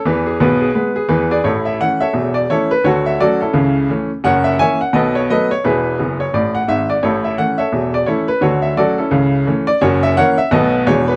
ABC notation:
X:1
M:4/4
L:1/8
Q:"Swing" 1/4=172
K:A
V:1 name="Upright piano"
B G B G B G B [Gd] | [EAc] e f [Ace]2 d [EAc] B | [FAc] e [FAd] [CEA]3 z2 | [^Acf] e [ceg] f [=AB^d] c [ABd] c |
[EGB]3 c d f e d | [EAc] e f [Ace]2 d [EAc] B | [FAc] e [FAd] [CEA]3 z d | [F^Ac] e [Acf] e [=AB^d]2 c B |]
V:2 name="Upright piano" clef=bass
[E,,E,]2 [B,,,B,,]2 [G,B,]2 [E,,E,]2 | [A,,,A,,]2 [E,A,C]2 [E,,,E,,]2 [E,A,C]2 | [D,,D,]2 [F,A,C]2 [C,,C,]2 [E,A,C]2 | [F,,,F,,]2 [E,^A,C]2 [B,,,B,,]2 [F,=A,B,]2 |
[E,,,E,,]2 [F,,,F,,]2 [A,,,A,,]2 [G,,,G,,]2 | [A,,,A,,]2 [E,A,C]2 [E,,,E,,]2 [E,A,C]2 | [D,,D,]2 [F,A,C]2 [C,,C,]2 [E,A,C]2 | [F,,,F,,]2 [E,^A,C]2 [B,,,B,,F,=A,B,]2 [E,,,E,,E,G,D]2 |]